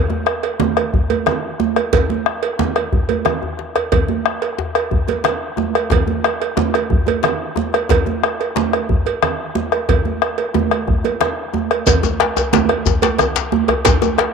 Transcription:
0.10 djembe slap, high conga, djembe tone
0.26 bombo rim, cowbell
0.43 bombo rim, cowbell, djembe slap
0.60 djembe slap, high conga, djembe tone, low conga
0.77 bombo rim, cowbell
0.94 bombo low, djembe bass
1.10 cowbell, djembe tone, high conga
1.26 bombo rim, cowbell, djembe slap, low conga
1.59 bombo rim, djembe slap, high conga, djembe tone
1.76 bombo rim, cowbell, djembe slap, high conga
1.93 bombo low, cowbell, djembe slap, low conga, djembe bass
2.09 djembe tone, high conga
2.26 bombo rim, high conga
2.43 cowbell, djembe slap
2.59 djembe slap, djembe tone, high conga, low conga
2.76 bombo rim, cowbell
2.93 bombo low, djembe bass
3.09 cowbell, high conga, djembe bass
3.25 bombo rim, cowbell, high conga, low conga, djembe bass
3.42 bombo rim, djembe bass
3.59 bombo rim, djembe slap
3.76 bombo rim, cowbell, djembe slap
3.92 bombo rim, bombo low, cowbell, djembe slap, low conga, djembe bass
4.08 djembe slap, high conga, djembe tone
4.26 bombo rim
4.42 bombo rim, cowbell, djembe slap
4.59 djembe slap, djembe tone
4.75 bombo rim, cowbell
4.91 bombo low, djembe bass
5.08 cowbell, djembe tone, high conga
5.24 bombo rim, cowbell, djembe slap, low conga
5.57 bombo rim, djembe tone, high conga
5.74 bombo rim, cowbell, djembe slap, high conga
5.90 bombo rim, bombo low, cowbell, djembe slap, djembe bass, low conga
6.07 djembe slap, djembe tone, high conga
6.24 bombo rim, cowbell
6.40 bombo rim, cowbell, djembe slap
6.57 djembe slap, djembe tone, high conga, low conga
6.74 bombo rim, cowbell
6.90 bombo low, djembe bass
7.06 cowbell, djembe tone, high conga
7.23 bombo rim, cowbell, djembe slap, low conga
7.56 bombo rim, djembe slap, djembe tone, high conga
7.73 bombo rim, cowbell, djembe slap, high conga
7.89 bombo rim, bombo low, cowbell, djembe slap, djembe bass, low conga
8.06 djembe slap, djembe tone, high conga
8.23 bombo rim, cowbell
8.40 bombo rim, cowbell, djembe slap
8.56 djembe slap, djembe tone, high conga, low conga
8.73 bombo rim, cowbell
8.89 bombo low, djembe bass
9.06 cowbell, djembe tone
9.22 bombo rim, cowbell, djembe slap, low conga
9.55 bombo rim, djembe slap, high conga, djembe tone
9.72 bombo rim, cowbell, djembe slap, high conga
9.89 bombo low, cowbell, djembe slap, djembe bass, low conga
10.05 djembe tone, high conga
10.22 bombo rim, cowbell
10.38 cowbell, djembe slap, high conga
10.54 djembe slap, djembe tone, high conga, low conga
10.71 bombo rim, cowbell, djembe slap
10.88 bombo rim, bombo low, djembe slap, djembe bass
11.04 cowbell, djembe slap, djembe tone, high conga
11.21 bombo rim, cowbell, djembe slap, low conga
11.54 djembe tone, high conga
11.71 bombo rim, cowbell, high conga
11.87 bombo rim, bombo low, cowbell, djembe slap, low conga, djembe bass, shekere
12.03 djembe slap, djembe tone, high conga, shekere
12.20 bombo rim, cowbell, djembe slap
12.37 bombo rim, cowbell, djembe slap, djembe tone, shekere
12.53 djembe slap, high conga, djembe tone, low conga, shekere
12.69 bombo rim, cowbell
12.86 bombo low, djembe tone, djembe bass, shekere
13.02 cowbell, djembe slap, high conga, djembe tone, shekere
13.19 bombo rim, cowbell, djembe slap, djembe tone, low conga, shekere
13.36 djembe slap, shekere
13.52 bombo rim, djembe slap, high conga, djembe tone
13.68 bombo rim, cowbell, djembe slap, djembe tone, high conga
13.85 bombo rim, bombo low, cowbell, djembe slap, low conga, djembe bass, shekere
14.02 djembe slap, high conga, djembe tone, shekere
14.18 bombo rim, cowbell, djembe slap

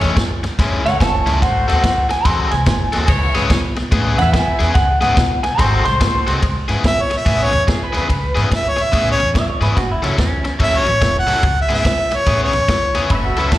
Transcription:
Already playing: G#4 A4 C#5
0.01 E2 A2 G#3 C#4 E4, snare, ride
0.17 F#2, muted overdriven electric guitar stroke, kick, snare, ride
0.43 muted overdriven electric guitar stroke, snare, ride
0.59 F#2 A2 G#3 C#4 E4, kick, snare, ride
0.84 C#2 G#4 A4 C#5 F#5, muted overdriven electric guitar stroke, snare, ride
1.00 F#1 A5, muted overdriven electric guitar stroke, kick, snare, ride
1.26 C#2 A2 G#3 C#4 E4, snare, ride
1.41 G#1 F#4 A4 C5 F#5, muted overdriven electric guitar stroke, kick, snare, ride
1.68 D#2 G#3 C4 F#4 A4 F#5, snare, ride
1.83 F#2, muted overdriven electric guitar stroke, kick, snare, ride
2.09 G#5, muted overdriven electric guitar stroke, snare, ride
2.25 E2 G#3 C4 F#4 A4 C6, kick, snare, ride
2.51 C2 G#5, muted overdriven electric guitar stroke, snare, ride
2.66 F#1, muted overdriven electric guitar stroke, kick, snare, ride
2.93 D#2 G#3 C4 F#4 A4, snare, ride
3.07 C#2 E4 B4 C#5, muted overdriven electric guitar stroke, kick, snare, ride
3.35 G#2 C#3 B3 E4 G#4, snare, ride
3.50 B2, muted overdriven electric guitar stroke, kick, snare, ride
3.76 muted overdriven electric guitar stroke, snare, ride
3.91 A2 C#3 B3 E4 G#4, kick, ride
4.17 E2 E4 B4 E5 F#5, muted overdriven electric guitar stroke, snare, ride
4.33 B1 G#5, muted overdriven electric guitar stroke, kick, snare, ride
4.59 E2 C#3 B3 E4 G#4, snare, ride
4.74 C#2 F#5, muted overdriven electric guitar stroke, kick, snare, ride
5.01 G#2 C#3 B3 E4 G#4 F#5, snare, ride
5.17 B2, muted overdriven electric guitar stroke, kick, snare, ride
5.43 G#5, muted overdriven electric guitar stroke, snare, ride
5.58 G#1 G#3 C4 F#4 A4 C5 C6, kick, snare, ride
5.85 C2 C6, muted overdriven electric guitar stroke, snare, ride
6.00 F#1, muted overdriven electric guitar stroke, kick, snare, ride
6.26 C2 G#3 C4 F#4 A4, snare, ride
6.43 C#2, muted overdriven electric guitar stroke, kick, ride
6.68 G#2 C#3 B3 E4 G#4, snare, ride
6.84 B2 E5, muted overdriven electric guitar stroke, kick, snare, ride
7.02 C#5
7.10 muted overdriven electric guitar stroke, snare, ride
7.17 E5
7.25 A2 C#3 B3 E4 G#4, kick, snare, ride
7.44 C#5
7.52 E2, muted overdriven electric guitar stroke, snare, ride
7.67 B1 G#4, muted overdriven electric guitar stroke, kick, snare, ride
7.83 B4
7.93 E2 C#3 B3 E4 G#4, snare, ride
7.97 B4
8.09 C#2, muted overdriven electric guitar stroke, kick, ride
8.35 G#2 C#3 B3 E4 G#4, snare, ride
8.50 muted overdriven electric guitar stroke, kick, snare, ride
8.55 E5
8.69 C#5
8.76 muted overdriven electric guitar stroke, snare, ride
8.83 E5
8.92 A2 C#3 B3 E4 G#4, kick, ride
9.11 C#5
9.19 E2, muted overdriven electric guitar stroke, snare, ride
9.34 B1 E5, muted overdriven electric guitar stroke, kick, snare, ride
9.50 C#5
9.61 G#2 C#3 B3 E4 G#4 B4, snare, ride
9.76 F#1 F#4, muted overdriven electric guitar stroke, kick, snare, ride
9.91 E4
10.02 C#2 F#3 C#4 E4 A4, snare, ride
10.18 E2 C#4, muted overdriven electric guitar stroke, kick, snare, ride
10.45 muted overdriven electric guitar stroke, snare, ride
10.59 D#2 F#3 C#4 E4 A4 E5, kick, ride
10.77 C#5
10.86 A1, muted overdriven electric guitar stroke, snare, ride
11.01 E1, muted overdriven electric guitar stroke, kick, snare, ride
11.19 F#5
11.27 B1 F#3 C#4 E4 A4, snare, ride
11.43 C#2, muted overdriven electric guitar stroke, kick, ride
11.61 E5
11.69 G#2 C#3 B3 E4 G#4, snare, ride
11.75 E5
11.85 B2, muted overdriven electric guitar stroke, kick, snare, ride
12.11 muted overdriven electric guitar stroke, snare, ride
12.16 C#5
12.26 A2 C#3 B3 E4 G#4, kick, snare, ride
12.43 C#5
12.53 E2, muted overdriven electric guitar stroke, snare, ride
12.68 B1, muted overdriven electric guitar stroke, kick, snare, ride
12.95 E2 C#3 B3 E4 G#4, snare, ride
13.09 F#1 F#4 A4 B4 E5, muted overdriven electric guitar stroke, kick, ride
13.25 F#4
13.36 C#2 F#3 C#4 E4 A4 B4, snare, ride
13.52 E2 A4, muted overdriven electric guitar stroke, kick, snare, ride

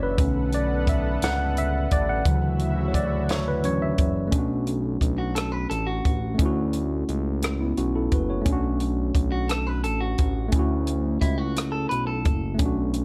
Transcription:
Already playing: F#1 C#3 D3 E3 F#3 C#4 F#4 C#5 D5 E5
0.03 B4
0.18 B1 D3 A3 B3 C#4 A4 B4 F#5, kick, closed hi-hat
0.52 D5, closed hi-hat
0.87 E5, kick, closed hi-hat
1.22 C#2 F#5, snare, closed hi-hat
1.57 E5, closed hi-hat
1.91 A1 D5, kick, closed hi-hat
2.09 F#5
2.25 D2 C#3 E3 F#3 E4 F#4 E5, kick, closed hi-hat
2.59 closed hi-hat
2.88 C#5
2.94 D5, kick, closed hi-hat
3.29 C#5, snare, closed hi-hat
3.48 B4
3.64 E3 F#3 C#4 C#5, closed hi-hat
3.82 E5
3.98 F#1, kick, closed hi-hat
4.27 A3 C#4
4.32 B1 D4, kick, closed hi-hat
4.38 F#4
4.67 closed hi-hat
5.01 B1, kick, closed hi-hat
5.18 F#4
5.35 A4, cross-stick, closed hi-hat
5.52 B4
5.70 A1 A4, closed hi-hat
5.87 F#4
6.05 A1, kick, closed hi-hat
6.34 A3 C#4
6.39 D2 E4, kick, closed hi-hat
6.45 F#4
6.73 closed hi-hat
7.08 C#2, closed hi-hat
7.42 cross-stick, closed hi-hat
7.61 B3 E4
7.77 B1 C#4 F#4, closed hi-hat
7.95 E4 A4
8.11 F#1 F#4 B4, kick, closed hi-hat
8.30 F#4 C#5
8.41 A3 C#4
8.45 B1 D4, kick, closed hi-hat
8.53 F#4
8.80 closed hi-hat
9.15 B1, kick, closed hi-hat
9.32 F#4
9.49 A4, cross-stick, closed hi-hat
9.67 B4
9.84 A1 A4, closed hi-hat
10.01 F#4
10.18 A1, kick, closed hi-hat
10.48 A3 C#4, closed hi-hat
10.53 D2 E4, kick
10.59 F#4
10.87 closed hi-hat
11.21 C#2 E4, kick, closed hi-hat
11.38 F#4
11.56 cross-stick, closed hi-hat
11.72 A4
11.89 B1 B4, closed hi-hat
12.07 A4
12.25 F#1, kick, closed hi-hat
12.55 A3 C#4
12.59 B1 D4, kick, closed hi-hat
12.65 F#4
12.94 closed hi-hat

